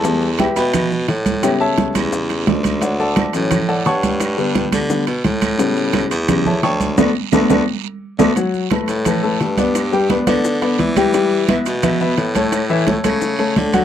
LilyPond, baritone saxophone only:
\new Staff \with { instrumentName = "Baritone saxophone" } { \clef bass \time 4/4 \key d \major \tempo 4 = 173 e,4. b,4. a,4~ | a,8 r4 e,4. d,4~ | d,4. a,4. g,4~ | g,4. d4 b,8 a,4~ |
a,4. e,4. d,4 | d,8 r8 d,8 d,8 r4. d,8 | r4. a,4. g,4~ | g,4. d4. e4~ |
e4. b,4. a,4~ | a,4. cis4. d4 | }